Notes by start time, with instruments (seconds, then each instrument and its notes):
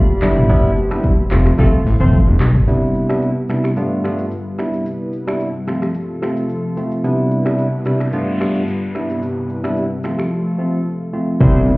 Already playing: analog synth pad G4 D5 F5 B5
0.10 high conga
0.22 analog synth bass G1, tine electric piano G3 B3 D4 E4, analog synth pad G4 C5 E5, finger snap, cross-stick, clap, low conga, shaker
0.37 mid tom, shaker
0.49 tine electric piano G3 B3 D4 E4, kick, shaker
0.64 high conga
0.77 high conga, shaker
0.91 tine electric piano G3 B3 D4 E4, finger snap, cross-stick, shaker
1.04 kick, low conga, shaker
1.19 high conga
1.31 analog synth bass F1, tine electric piano F3 A3 C4 F4, analog synth pad A4 F5 C6, finger snap, cross-stick, clap, low conga, shaker
1.46 finger snap, cross-stick, high conga, shaker
1.58 analog synth bass C2, tine electric piano F3 A3 C4 F4, horn section A3 C4 F4 A4, kick, shaker
1.86 analog synth bass A1, open hi-hat, high conga, shaker
2.00 analog synth bass F1, tine electric piano F3 A3 C4 F4, horn section C4 F4 A4 C5, mid tom, shaker
2.13 kick, low conga, shaker
2.27 analog synth bass F1, high conga
2.40 analog synth bass B1, finger snap, cross-stick, clap, low conga, shaker
2.55 kick, mid tom, shaker
2.67 tine electric piano C3 G3 B3 D4 E4, analog synth pad C3 G3 B3 E4 B4, shaker
2.95 shaker
3.09 tine electric piano C3 G3 B3 D4 E4, finger snap, cross-stick, shaker
3.22 shaker
3.49 tine electric piano C3 G3 B3 D4 E4, finger snap, cross-stick, shaker
3.64 finger snap, cross-stick, shaker
3.76 tine electric piano G2 A3 B3 D4 F4, analog synth pad D3 G3 F4 B4, shaker
4.04 tine electric piano G2 A3 B3 D4 F4, finger snap, cross-stick, shaker
4.18 shaker
4.31 shaker
4.58 analog synth pad G2 C3 B3 E4 B4, tine electric piano G3 B3 D4 E4, finger snap, cross-stick, shaker
4.73 shaker
4.86 shaker
5.13 shaker
5.27 tine electric piano G3 B3 D4 E4, finger snap, cross-stick, shaker
5.40 shaker
5.67 tine electric piano F3 A3 C4 F4, analog synth pad F3 A3 F4 A4, finger snap, cross-stick, shaker
5.82 finger snap, cross-stick, shaker
5.94 shaker
6.22 tine electric piano F3 A3 C4 F4, finger snap, cross-stick, shaker
6.37 shaker
6.49 shaker
6.77 tine electric piano F3 A3 C4 F4, shaker
6.91 shaker
7.04 tine electric piano C3 G3 B3 D4 E4, analog synth pad G3 B3 E4 B4, noise sweep, shaker
7.31 shaker
7.45 tine electric piano C3 G3 B3 D4 E4, finger snap, cross-stick, shaker
7.58 shaker
7.85 tine electric piano C3 G3 B3 D4 E4, finger snap, cross-stick, shaker
8.00 finger snap, cross-stick, shaker
8.12 tine electric piano G2 A3 B3 D4 F4, analog synth pad D3 F4 B4, shaker
8.40 tine electric piano G2 A3 B3 D4 F4, finger snap, cross-stick, shaker
8.55 shaker
8.68 shaker
8.95 analog synth pad G2 C3 E4, tine electric piano G3 B3 D4 E4, finger snap, cross-stick, shaker
9.10 shaker
9.22 shaker
9.49 shaker
9.63 tine electric piano G3 B3 D4 E4, finger snap, cross-stick, shaker
9.77 shaker
10.03 tine electric piano F3 A3 C4 F4, analog synth pad F3 A3 F4 A4, finger snap, cross-stick, shaker
10.19 finger snap, cross-stick, shaker
10.58 tine electric piano F3 A3 C4 F4
11.13 tine electric piano F3 A3 C4 F4
11.40 analog synth bass C2, tine electric piano G3 B3 D4 E4, horn section C4 E4 G4 C5, kick, impact, shaker
11.55 high conga
11.68 high conga, shaker